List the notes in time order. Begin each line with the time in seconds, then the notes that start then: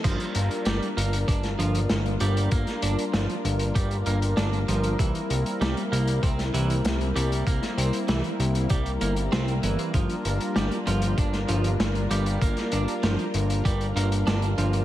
0.04 G1 F3 G3 A#3 D4 F4 A#4, kick, closed hi-hat, crash
0.20 closed hi-hat
0.35 G1, closed hi-hat
0.51 closed hi-hat
0.65 G1 G3, snare, closed hi-hat
0.82 closed hi-hat
0.97 G1 A#3, closed hi-hat
1.13 closed hi-hat
1.28 G1 D4, kick, closed hi-hat
1.43 snare, closed hi-hat
1.59 G1 F3, closed hi-hat
1.75 closed hi-hat
1.89 G1, snare, closed hi-hat
2.06 closed hi-hat
2.20 G1 G3, closed hi-hat
2.37 closed hi-hat
2.51 G1 A#3, kick, closed hi-hat
2.67 snare, closed hi-hat
2.82 G1 D4, closed hi-hat
2.99 closed hi-hat
3.13 G1 F3, snare, closed hi-hat
3.29 closed hi-hat
3.45 G1, closed hi-hat
3.59 closed hi-hat
3.75 G1 G3, kick, closed hi-hat
3.91 closed hi-hat
4.06 G1 A#3, closed hi-hat
4.22 closed hi-hat
4.37 G1 D4, snare, closed hi-hat
4.53 closed hi-hat
4.68 G1 F3, closed hi-hat
4.83 closed hi-hat
4.99 C2 E3 C4 E4, kick, closed hi-hat
5.15 closed hi-hat
5.30 C2, closed hi-hat
5.46 closed hi-hat
5.61 C2 G3, snare, closed hi-hat
5.77 closed hi-hat
5.92 C2 A#3, closed hi-hat
6.07 closed hi-hat
6.23 C2 C4, kick, closed hi-hat
6.39 snare, closed hi-hat
6.54 C2 E3, closed hi-hat
6.70 closed hi-hat
6.85 C2, snare, closed hi-hat
7.01 closed hi-hat
7.16 C2 G3, closed hi-hat
7.32 closed hi-hat
7.47 C2 A#3, kick, closed hi-hat
7.62 snare, closed hi-hat
7.77 C2 C4, closed hi-hat
7.93 closed hi-hat
8.08 C2 E3, snare, closed hi-hat
8.24 closed hi-hat
8.39 C2, closed hi-hat
8.55 closed hi-hat
8.69 C2 G3, kick, closed hi-hat
8.86 closed hi-hat
9.01 G1 A#3, closed hi-hat
9.16 closed hi-hat
9.32 C2 C4, snare, closed hi-hat
9.48 closed hi-hat
9.63 G1 E3, closed hi-hat
9.79 closed hi-hat
9.94 G1 F3 D4 F4 A#4, kick, closed hi-hat
10.09 closed hi-hat
10.25 G1, closed hi-hat
10.40 closed hi-hat
10.56 G1 G3, snare, closed hi-hat
10.71 closed hi-hat
10.87 G1 F3, closed hi-hat
11.02 closed hi-hat
11.18 G1 D4, kick, closed hi-hat
11.33 snare, closed hi-hat
11.48 G1 F3, closed hi-hat
11.64 closed hi-hat
11.79 G1, snare, closed hi-hat
11.95 closed hi-hat
12.11 G1 G3, closed hi-hat
12.26 closed hi-hat
12.41 G1 A#3, kick, closed hi-hat
12.57 snare, closed hi-hat
12.72 G1 D4, closed hi-hat
12.88 closed hi-hat
13.03 G1 F3, snare, closed hi-hat
13.19 closed hi-hat
13.34 G1, closed hi-hat
13.50 closed hi-hat
13.65 G1 G3, kick, closed hi-hat
13.81 closed hi-hat
13.96 G1 A#3, closed hi-hat
14.12 closed hi-hat
14.27 G1 D4, snare, closed hi-hat
14.42 closed hi-hat
14.58 G1 F3, closed hi-hat
14.73 closed hi-hat